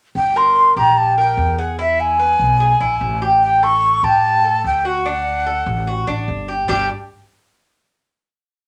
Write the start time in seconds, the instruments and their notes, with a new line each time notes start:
0.15 upright bass G1, flute G5
0.36 cuban tres A#4, flute C6
0.76 upright bass A#1, cuban tres G4, flute A#5
0.98 flute A5
1.18 cuban tres A#4, flute G5
1.37 upright bass E2
1.58 cuban tres G#4, flute F#5
1.79 cuban tres E4, flute E5
2.00 flute G#5
2.19 cuban tres B4
2.39 upright bass B1
2.60 cuban tres G#4
2.80 upright bass A#1, cuban tres E4
3.01 upright bass A1
3.22 cuban tres G4
3.43 flute G5
3.63 cuban tres A4, flute C#6
4.03 upright bass A2, cuban tres G4, flute A5
4.44 cuban tres A4
4.64 upright bass D2, flute G5
4.85 cuban tres F#4, flute F#5
5.06 cuban tres D4
5.46 cuban tres A4
5.66 upright bass A1
5.87 cuban tres F#4
6.07 upright bass A1, cuban tres D4
6.28 upright bass G1
6.48 cuban tres G4
6.68 upright bass G1, cuban tres G3 D4 G4, flute G5